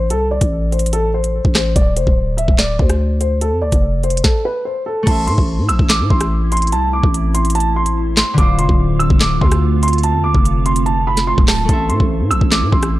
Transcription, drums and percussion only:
0.10 closed hi-hat
0.41 kick, closed hi-hat
0.72 closed hi-hat
0.79 closed hi-hat
0.86 closed hi-hat
0.93 closed hi-hat
1.24 closed hi-hat
1.45 kick
1.55 cross-stick, snare, clap, closed hi-hat
1.76 kick, closed hi-hat
1.97 closed hi-hat
2.07 kick
2.38 closed hi-hat
2.48 kick
2.58 snare, clap, closed hi-hat
2.79 kick
2.89 cross-stick, closed hi-hat
3.21 closed hi-hat
3.41 closed hi-hat
3.72 kick, closed hi-hat
4.03 closed hi-hat
4.10 closed hi-hat
4.17 closed hi-hat
4.24 kick, snare
5.07 kick, closed hi-hat, crash
5.28 closed hi-hat
5.38 kick
5.69 closed hi-hat
5.79 kick
5.90 snare, clap, closed hi-hat
6.10 kick
6.21 cross-stick, closed hi-hat
6.52 closed hi-hat
6.57 closed hi-hat
6.62 closed hi-hat
6.67 closed hi-hat
6.72 closed hi-hat
7.03 kick
7.14 closed hi-hat
7.35 closed hi-hat
7.45 closed hi-hat
7.50 closed hi-hat
7.55 closed hi-hat
7.60 closed hi-hat
7.86 closed hi-hat
8.17 snare, clap, closed hi-hat
8.38 kick, closed hi-hat
8.59 closed hi-hat
8.69 kick
9.00 closed hi-hat
9.10 kick
9.21 snare, clap, closed hi-hat
9.41 kick
9.51 cross-stick, closed hi-hat
9.83 closed hi-hat
9.88 closed hi-hat
9.93 closed hi-hat
9.98 closed hi-hat
10.03 closed hi-hat
10.35 kick
10.45 closed hi-hat
10.66 closed hi-hat
10.76 closed hi-hat
10.86 closed hi-hat
11.17 snare, closed hi-hat
11.38 kick
11.48 cross-stick, snare, clap, open hi-hat
11.69 kick, closed hi-hat
11.90 closed hi-hat
12.00 kick
12.31 closed hi-hat
12.41 kick
12.52 snare, clap, closed hi-hat
12.72 kick
12.83 cross-stick, closed hi-hat

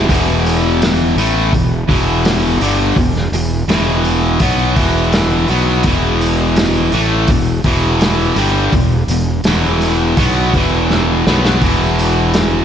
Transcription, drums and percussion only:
0.09 kick, open hi-hat
0.46 open hi-hat
0.82 snare, open hi-hat
1.18 open hi-hat
1.53 kick, open hi-hat
1.89 kick, open hi-hat
2.25 snare, open hi-hat
2.61 open hi-hat
2.96 kick, open hi-hat
3.16 snare
3.33 open hi-hat
3.69 snare, open hi-hat
4.05 open hi-hat
4.40 kick, open hi-hat
4.76 kick, open hi-hat
5.12 snare, open hi-hat
5.48 open hi-hat
5.83 kick, open hi-hat
6.21 open hi-hat
6.56 snare, open hi-hat
6.92 open hi-hat
7.28 kick, open hi-hat
7.64 kick, open hi-hat
8.01 snare, open hi-hat
8.36 open hi-hat
8.72 kick, open hi-hat
9.08 open hi-hat
9.44 snare, open hi-hat
9.81 open hi-hat
10.17 kick, open hi-hat
10.54 kick, open hi-hat
10.90 snare
11.27 snare
11.45 snare
11.62 kick, open hi-hat
11.99 open hi-hat
12.34 snare, open hi-hat

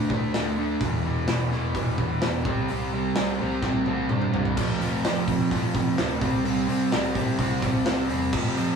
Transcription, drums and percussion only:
0.10 kick
0.34 snare, open hi-hat
0.81 kick, open hi-hat
1.27 snare, open hi-hat
1.52 snare
1.75 kick, open hi-hat
1.98 kick
2.21 snare, open hi-hat
2.45 kick
2.68 open hi-hat
3.15 snare, open hi-hat
3.62 kick, snare
3.86 high tom
4.09 mid tom
4.22 mid tom
4.34 floor tom
4.45 floor tom
4.57 kick, crash
4.81 open hi-hat
5.04 snare, open hi-hat
5.28 kick, open hi-hat
5.51 kick, open hi-hat
5.75 kick, open hi-hat
5.98 snare, open hi-hat
6.21 kick, open hi-hat
6.45 open hi-hat
6.69 open hi-hat
6.92 snare, open hi-hat
7.15 kick, open hi-hat
7.39 kick, open hi-hat
7.62 kick, snare, open hi-hat
7.86 snare, open hi-hat
8.10 open hi-hat
8.33 kick, crash
8.57 open hi-hat

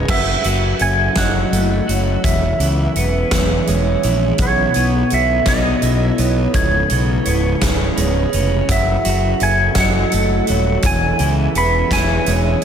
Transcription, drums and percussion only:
0.08 kick, crash
0.44 closed hi-hat
0.79 closed hi-hat
1.16 kick, snare, closed hi-hat
1.53 closed hi-hat
1.89 closed hi-hat
2.24 kick, closed hi-hat
2.60 closed hi-hat
2.96 closed hi-hat
3.31 kick, snare, closed hi-hat
3.67 closed hi-hat
4.03 closed hi-hat
4.38 kick, closed hi-hat
4.74 closed hi-hat
5.10 closed hi-hat
5.46 kick, snare, closed hi-hat
5.82 closed hi-hat
6.18 closed hi-hat
6.54 kick, closed hi-hat
6.90 closed hi-hat
7.25 closed hi-hat
7.62 kick, snare, closed hi-hat
7.97 closed hi-hat
8.33 closed hi-hat
8.69 kick, closed hi-hat
9.05 closed hi-hat
9.40 closed hi-hat
9.75 kick, snare, closed hi-hat
10.12 closed hi-hat
10.47 closed hi-hat
10.82 kick, closed hi-hat
11.19 closed hi-hat
11.55 closed hi-hat
11.91 kick, snare, closed hi-hat
12.26 closed hi-hat

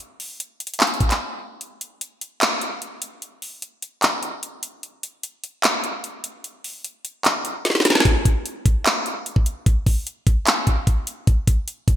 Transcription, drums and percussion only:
0.20 open hi-hat
0.40 closed hi-hat
0.60 closed hi-hat
0.67 closed hi-hat
0.74 closed hi-hat
0.80 clap, closed hi-hat
0.87 closed hi-hat
0.94 closed hi-hat
1.00 kick, closed hi-hat
1.11 clap, closed hi-hat
1.61 closed hi-hat
1.81 closed hi-hat
2.01 closed hi-hat
2.21 closed hi-hat
2.41 clap, closed hi-hat
2.61 closed hi-hat
2.82 closed hi-hat
3.02 closed hi-hat
3.22 closed hi-hat
3.42 open hi-hat
3.62 closed hi-hat
3.82 closed hi-hat
4.03 clap, closed hi-hat
4.23 closed hi-hat
4.43 closed hi-hat
4.63 closed hi-hat
4.83 closed hi-hat
5.03 closed hi-hat
5.23 closed hi-hat
5.44 closed hi-hat
5.64 clap, closed hi-hat
5.84 closed hi-hat
6.04 closed hi-hat
6.24 closed hi-hat
6.44 closed hi-hat
6.64 open hi-hat
6.84 closed hi-hat
7.05 closed hi-hat
7.25 clap, closed hi-hat
7.45 closed hi-hat
7.65 snare, closed hi-hat
7.70 snare
7.75 snare
7.80 snare
7.85 snare, closed hi-hat
7.90 snare
7.95 snare
8.00 snare
8.05 kick, closed hi-hat
8.25 kick, closed hi-hat
8.46 closed hi-hat
8.66 kick, closed hi-hat
8.86 clap, closed hi-hat
9.06 closed hi-hat
9.26 closed hi-hat
9.36 kick
9.46 closed hi-hat
9.66 kick, closed hi-hat
9.86 kick, open hi-hat
10.07 closed hi-hat
10.27 kick, closed hi-hat
10.47 clap, closed hi-hat
10.67 kick, closed hi-hat
10.87 kick, closed hi-hat
11.07 closed hi-hat
11.27 kick, closed hi-hat
11.47 kick, closed hi-hat
11.68 closed hi-hat
11.88 kick, closed hi-hat

